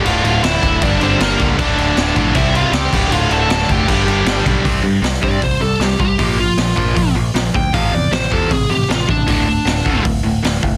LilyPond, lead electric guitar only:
\new Staff \with { instrumentName = "Lead electric guitar" } { \time 4/4 \key d \minor \tempo 4 = 156 << { f''8 f''8 e''4 d''8 c''8 bes'8. r16 | d''2 e''16. e''32 f''8 g''4 | f''8 a''8 a''8 g''2 r8 | r4. d''8 c''8 a'8 g'8 g'8~ |
g'8 f'2 r4 g''8 | f''8 d''8 c''8 a'8 gis'8 g'8 f'8 d'8 | d'2 r2 | } \\ { f'8 f'8 e'4 d'8 c'8 bes8. r16 | d'2 e'8 f'8 g'4 | f'8 a'8 a'8 g'2 r8 | r1 |
r1 | r1 | r1 | } >> }